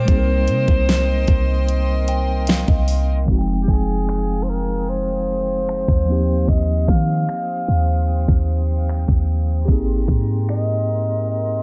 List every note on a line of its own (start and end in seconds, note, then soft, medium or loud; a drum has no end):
0.00 3.24 A#4 medium
0.00 2.49 C5 loud
0.00 3.24 G5 medium
0.05 0.50 C2 loud
0.05 3.23 G3 medium
0.05 3.23 A#3 medium
0.05 3.24 C4 medium
0.05 3.25 D#5 medium
0.05 3.25 C6 medium
0.05 kick loud
0.05 closed hi-hat medium
0.10 3.25 D#4 medium
0.10 0.16 G#4 medium
0.18 3.29 A#4 medium
0.48 0.67 C3 medium
0.48 closed hi-hat medium
0.68 1.26 C2 loud
0.68 kick medium
0.89 snare loud
0.89 closed hi-hat medium
1.28 2.64 C2 loud
1.28 kick medium
1.28 closed hi-hat medium
1.68 closed hi-hat medium
2.08 2.46 G5 medium
2.08 closed hi-hat medium
2.47 2.67 F5 medium
2.47 snare loud
2.47 closed hi-hat medium
2.68 3.26 C2 loud
2.68 3.24 D#5 medium
2.68 kick medium
2.88 open hi-hat medium
3.26 3.67 F1 loud
3.26 6.03 F3 medium
3.26 6.04 G#3 medium
3.26 6.04 C4 medium
3.26 6.05 G#4 medium
3.26 9.64 F5 medium
3.26 11.63 G5 medium
3.26 6.05 D#6 medium
3.26 kick loud
3.26 closed hi-hat medium
3.30 6.05 D#4 medium
3.30 3.37 F#4 medium
3.39 6.09 G5 medium
3.48 closed hi-hat soft
3.63 3.71 G4 medium
3.68 5.84 F1 loud
3.68 4.44 G#4 medium
3.68 kick loud
3.68 closed hi-hat medium
3.89 closed hi-hat medium
4.09 finger snap loud
4.09 closed hi-hat medium
4.28 closed hi-hat soft
4.43 4.50 C5 medium
4.47 4.90 A#4 medium
4.47 closed hi-hat medium
4.68 closed hi-hat soft
4.88 6.50 C5 medium
4.88 closed hi-hat medium
5.07 closed hi-hat soft
5.28 closed hi-hat medium
5.67 finger snap loud
5.67 closed hi-hat medium
5.88 6.46 D#2 loud
5.88 kick medium
5.88 closed hi-hat soft
6.05 9.23 F3 medium
6.05 9.24 A#3 medium
6.05 9.24 C4 medium
6.05 9.64 C5 medium
6.05 9.65 D#6 medium
6.05 closed hi-hat medium
6.10 9.25 D#4 medium
6.10 9.26 G4 medium
6.28 closed hi-hat soft
6.47 6.87 D#2 loud
6.47 6.90 D#5 loud
6.47 kick loud
6.47 closed hi-hat medium
6.68 closed hi-hat soft
6.87 7.27 D#3 loud
6.87 8.48 F5 loud
6.87 kick medium
6.87 closed hi-hat medium
7.09 closed hi-hat medium
7.29 finger snap loud
7.29 closed hi-hat medium
7.48 closed hi-hat soft
7.67 8.26 D#2 loud
7.67 closed hi-hat medium
7.88 closed hi-hat soft
8.08 closed hi-hat medium
8.28 9.05 D#2 loud
8.28 kick loud
8.28 closed hi-hat soft
8.48 closed hi-hat medium
8.87 finger snap loud
8.87 closed hi-hat medium
9.08 9.66 D#2 loud
9.08 kick medium
9.08 closed hi-hat soft
9.28 closed hi-hat medium
9.48 closed hi-hat soft
9.65 10.07 G#1 loud
9.65 11.63 A#3 medium
9.65 11.63 C4 medium
9.65 11.63 G4 medium
9.65 11.63 A#4 medium
9.65 11.63 A#5 medium
9.65 11.63 C6 medium
9.65 kick loud
9.65 closed hi-hat medium
9.70 11.63 D#4 medium
9.70 11.63 G#4 medium
9.88 closed hi-hat soft
10.08 11.63 G#2 loud
10.08 kick loud
10.08 closed hi-hat medium
10.29 closed hi-hat medium
10.49 11.25 D#5 loud
10.49 finger snap loud
10.49 closed hi-hat medium
10.68 closed hi-hat soft
10.88 closed hi-hat medium
11.08 closed hi-hat soft
11.28 11.63 D#5 loud
11.28 closed hi-hat medium
11.48 closed hi-hat soft